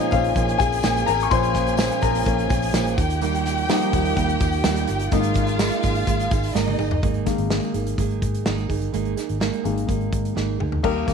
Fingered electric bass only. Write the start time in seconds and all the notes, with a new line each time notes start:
0.12 A#1
0.36 A#1
0.60 A#1
0.84 A#1
1.08 A1
1.32 A#1
2.03 A#1
2.26 A#1
2.50 A#1
2.74 A#1
2.98 D#2
3.94 D#2
4.17 D#2
4.41 D#2
4.65 D#2
4.89 G1
5.12 G#1
5.84 G#1
6.07 G#1
6.32 G#1
6.55 G#1
6.79 G1
7.03 G#1
7.38 G#1
7.74 G#1
7.98 G#1
8.22 G#2
8.46 G#1
8.70 G1
8.94 G#1
9.30 G#1
9.65 G#1
9.89 G#1
10.13 G#2
10.37 G#1
10.61 D2
10.84 D#2
11.08 D#2